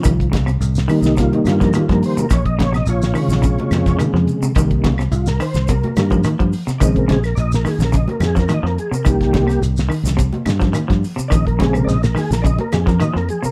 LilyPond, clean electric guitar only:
\new Staff \with { instrumentName = "Clean electric guitar" } { \clef bass \time 4/4 \key bes \dorian \tempo 4 = 106 ees8 des16 c8 r16 ees8 c8 r16 f16 ees16 f8 c16 | r8 des16 c8 r16 ees8 des8 r8 ees16 f8 c16 | ees8 des16 c8 r16 ees8 c8 r16 f16 ees16 f8 c16 | ees8 des16 r8. ees8 des8 r16 f16 ees16 f8 c16 |
ees8 des16 c8 r16 ees8 c8 r16 f16 ees16 f8 c16 | ees8 des16 c8 r16 ees8 des8 r16 f16 ees16 f8 c16 | }